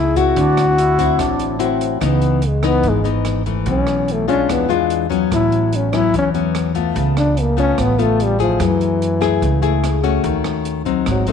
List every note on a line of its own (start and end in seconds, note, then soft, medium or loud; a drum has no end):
0.00 0.32 C#2 medium
0.00 0.34 C#3 medium
0.00 0.12 A3 medium
0.00 0.19 E4 medium
0.00 0.12 G#4 medium
0.16 0.95 C4 medium
0.16 0.95 E4 medium
0.16 0.95 F#4 medium
0.16 1.61 F#4 loud
0.16 kick medium
0.16 closed hi-hat soft
0.34 1.15 D2 loud
0.34 1.17 D3 medium
0.34 0.79 D4 medium
0.34 kick medium
0.34 closed hi-hat medium
0.57 cross-stick medium
0.57 closed hi-hat soft
0.77 1.20 E4 medium
0.77 closed hi-hat soft
0.98 1.57 C4 medium
0.98 1.57 E4 medium
0.98 1.57 F#4 medium
0.98 kick medium
0.98 closed hi-hat soft
1.19 1.97 A1 medium
1.19 1.99 A2 medium
1.19 1.62 D4 medium
1.19 kick medium
1.19 cross-stick medium
1.19 closed hi-hat medium
1.39 closed hi-hat soft
1.59 1.97 C4 medium
1.59 2.01 C4 medium
1.59 1.98 E4 medium
1.59 1.98 F#4 medium
1.59 closed hi-hat soft
1.81 closed hi-hat soft
2.01 2.80 C#2 medium
2.01 2.81 C#3 medium
2.01 2.42 E3 soft
2.01 2.42 B3 medium
2.01 2.42 D#4 medium
2.01 kick medium
2.01 cross-stick medium
2.01 closed hi-hat soft
2.06 2.49 B3 medium
2.22 closed hi-hat soft
2.42 closed hi-hat soft
2.48 2.67 G#3 medium
2.63 3.01 E3 medium
2.63 3.01 B3 medium
2.63 2.91 B3 medium
2.63 3.01 D#4 medium
2.63 kick soft
2.63 cross-stick medium
2.63 closed hi-hat soft
2.83 3.62 G#1 medium
2.83 3.64 G#2 medium
2.83 kick medium
2.83 closed hi-hat soft
2.89 3.07 G#3 medium
3.04 3.42 E3 medium
3.04 3.42 B3 medium
3.04 3.42 D#4 medium
3.04 closed hi-hat soft
3.25 cross-stick medium
3.25 closed hi-hat soft
3.46 4.25 E3 medium
3.46 4.25 A3 medium
3.46 kick soft
3.46 closed hi-hat soft
3.66 4.44 B1 loud
3.66 4.46 B2 medium
3.66 4.13 C#4 medium
3.66 kick medium
3.66 closed hi-hat soft
3.87 cross-stick medium
3.87 closed hi-hat soft
4.08 4.28 A3 medium
4.08 closed hi-hat soft
4.28 4.66 G#3 medium
4.28 4.53 C#4 medium
4.28 4.66 D4 medium
4.28 4.66 F4 medium
4.28 kick soft
4.28 closed hi-hat soft
4.49 5.27 E2 medium
4.49 5.09 E3 medium
4.49 4.71 B3 medium
4.49 kick medium
4.49 cross-stick medium
4.49 closed hi-hat soft
4.69 5.07 G#3 medium
4.69 5.07 D4 medium
4.69 5.07 F4 medium
4.69 closed hi-hat soft
4.90 closed hi-hat soft
5.10 5.89 F#3 medium
5.10 5.89 B3 medium
5.10 5.89 C#4 medium
5.10 kick soft
5.10 closed hi-hat soft
5.31 6.10 A1 loud
5.31 6.11 A2 medium
5.31 5.77 E4 medium
5.31 kick medium
5.31 cross-stick medium
5.31 closed hi-hat soft
5.52 closed hi-hat soft
5.73 5.97 C#4 medium
5.73 closed hi-hat soft
5.93 6.30 F#3 medium
5.93 6.31 B3 medium
5.93 6.31 C#4 medium
5.93 6.14 E4 medium
5.93 kick soft
5.93 cross-stick medium
5.93 closed hi-hat soft
6.14 6.92 E2 medium
6.14 6.94 E3 medium
6.14 kick medium
6.14 closed hi-hat soft
6.19 6.29 C#4 medium
6.34 6.72 F#3 medium
6.34 6.72 B3 medium
6.34 6.72 C#4 medium
6.34 closed hi-hat soft
6.55 cross-stick medium
6.55 closed hi-hat soft
6.75 7.54 A3 medium
6.75 7.54 B3 medium
6.75 7.54 F4 medium
6.75 kick soft
6.75 closed hi-hat soft
6.95 7.74 C#2 loud
6.95 7.75 C#3 medium
6.95 kick medium
6.95 closed hi-hat soft
7.17 7.42 D4 medium
7.17 cross-stick medium
7.17 closed hi-hat soft
7.37 7.59 A#3 medium
7.37 closed hi-hat soft
7.57 7.95 A3 medium
7.57 7.95 B3 medium
7.57 7.83 C#4 medium
7.57 7.95 F4 medium
7.57 kick soft
7.57 closed hi-hat soft
7.78 8.56 A1 medium
7.78 8.58 C#3 medium
7.78 8.02 B3 medium
7.78 kick medium
7.78 cross-stick medium
7.78 closed hi-hat soft
7.98 8.36 A3 medium
7.98 8.25 A3 medium
7.98 8.36 B3 medium
7.98 8.36 F4 medium
7.98 closed hi-hat soft
8.20 8.40 G3 medium
8.20 closed hi-hat soft
8.39 8.65 F3 medium
8.39 9.18 A3 medium
8.39 9.18 E4 medium
8.39 9.18 G#4 medium
8.39 kick soft
8.39 closed hi-hat soft
8.59 9.38 F#2 loud
8.59 9.39 F#3 medium
8.59 kick medium
8.59 cross-stick medium
8.59 closed hi-hat soft
8.64 9.85 E3 medium
8.81 closed hi-hat soft
9.02 closed hi-hat soft
9.21 9.59 A3 medium
9.21 9.59 E4 medium
9.21 9.59 G#4 medium
9.21 kick soft
9.21 cross-stick medium
9.21 closed hi-hat soft
9.41 10.20 C#2 medium
9.41 10.22 C#3 medium
9.41 kick medium
9.41 closed hi-hat soft
9.62 10.00 A3 medium
9.62 10.00 E4 medium
9.62 10.00 G#4 medium
9.62 closed hi-hat soft
9.84 cross-stick medium
9.84 closed hi-hat soft
10.03 10.83 A3 medium
10.03 10.83 C#4 medium
10.03 10.83 F#4 medium
10.03 kick soft
10.03 closed hi-hat soft
10.24 11.02 D#2 loud
10.24 10.85 D#3 medium
10.24 kick medium
10.24 closed hi-hat soft
10.44 cross-stick medium
10.44 closed hi-hat soft
10.65 closed hi-hat soft
10.85 11.23 F#3 medium
10.85 11.24 C4 medium
10.85 11.24 D#4 medium
10.85 kick soft
10.85 closed hi-hat soft
11.06 11.32 G#1 medium
11.06 11.32 G#2 medium
11.06 11.27 F#3 medium
11.06 kick medium
11.06 cross-stick medium
11.06 closed hi-hat soft
11.27 11.32 F#3 medium
11.27 11.32 A3 medium
11.27 11.32 C4 medium
11.27 11.32 D#4 medium
11.27 closed hi-hat soft